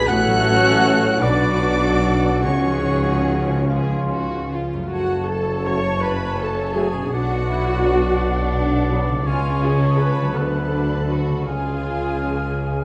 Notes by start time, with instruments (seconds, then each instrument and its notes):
Already playing: trombone section B2 D4, harp B2 B3 D4 G#4 B4 D5, french horn section B4, flute section B5, violin section B6
0.07 tuba A1, double bass section A1, trombone section A2 C#4, cello section A2, harp A2, french horn section F#4, violin section F#4 C#5 F#6, trumpet section A4, flute section F#5, oboe F#5
0.11 viola section A3 C#4
0.27 harp F#3
0.65 harp C#5
0.84 harp A4
1.03 harp F#5
1.19 tuba B1, double bass section B1, cello section B2, harp B2, trombone section B2 B3, viola section F#3 D4, french horn section D4, trumpet section F#4, flute section D5, oboe D5, violin section D6
1.23 violin section F#4 B4
1.41 harp B3
1.61 harp F#4
1.82 violin section A4, harp B4
2.22 harp F#5
2.42 tuba C#2, double bass section C#2, trombone section G#2 C#4, harp C#3, cello section C#3, viola section F3 C#4, violin section C#4 G#4 C#6, french horn section C#4, flute section C#5, oboe C#5
2.65 harp F3
2.86 harp G#4
3.08 harp F4
3.28 harp C#5
3.50 harp G#5
3.69 trumpet section F4, violin section G#4, harp F5
3.89 harp G#5
4.11 violin section F#4, harp C#5
4.31 harp F4
4.52 violin section F4, harp G#4
4.73 harp F#2 C#4
4.78 harp A3
4.83 harp C#4
4.87 tuba F#1, harp F#4, viola section F#4
4.91 double bass section F#1, cello section F#2, oboe C#5, violin section F#5, flute section A5
5.28 viola section A4, violin section A5
5.65 trombone section F#3 A3, french horn section C#4 F#4, viola section C#5, violin section C#6
6.03 violin section C#4 B5, viola section B4
6.40 viola section A4, violin section A5
6.75 trombone section F#3 A3, french horn section C#4 F#4, viola section G#4, violin section G#5
6.94 harp B2
6.99 harp B3
7.03 harp D4
7.08 tuba B1, cello section B2, harp F#4, flute section F#5
7.12 double bass section B1, violin section D4 F#5, viola section F#4, oboe D5
7.48 violin section E4
7.83 trombone section F#3 B3, violin section D4, french horn section D4 F#4
8.90 trombone section F#3 B3, french horn section D4 F#4
9.09 harp C#3
9.13 harp G#3
9.17 harp C#4
9.22 tuba C#2, double bass section C#2, violin section C#4 F5, harp C#5, flute section G#5
9.26 cello section C#3, viola section F4, oboe C#5
9.61 viola section G#4, violin section G#5
9.78 flute section A5
9.96 trombone section C#3 G#3, french horn section C#4 G#4, viola section B4, violin section B5
10.17 harp D3
10.22 harp F#3
10.26 harp F#4
10.31 tuba D2, violin section B3 A5, viola section A4, harp B4
10.35 double bass section D2, cello section D3, oboe F#5, flute section B5
10.43 viola section B4
10.51 viola section A4
10.60 viola section B4
10.67 violin section D4, viola section A4
10.76 viola section B4
10.83 viola section A4
10.94 viola section B4
11.01 viola section A4
11.08 trombone section D3 F#3, french horn section B3 B4, violin section F#4, viola section B4
11.15 viola section A4
11.27 harp C#3
11.32 harp G#3
11.37 harp F4
11.41 harp C#5
11.46 tuba C#2, double bass section C#2, cello section C#3, violin section F4 G#5, viola section G#4, oboe F5, flute section G#5
12.22 trombone section C#3 F3, french horn section C#4 G#4